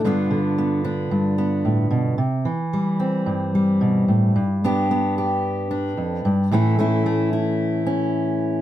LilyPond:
\new Staff \with { instrumentName = "Steel-string acoustic guitar" } { \time 4/4 \key g \mixolydian \tempo 4 = 111 << { <d b d' f'>4 b8 d'4 b4. | r4 g8 c'4 g4.~ | g8 <b d' g'>8 b8 g'4 d'4. | <e a cis' e'>8 <a cis' e'>8 a8 e'4 cis'4. | } \\ { g,8 d4. g,4 a,8 b,8 | c8 e4. g,4 b,8 a,8 | g,2. f,8 g,8 | a,1 | } >> }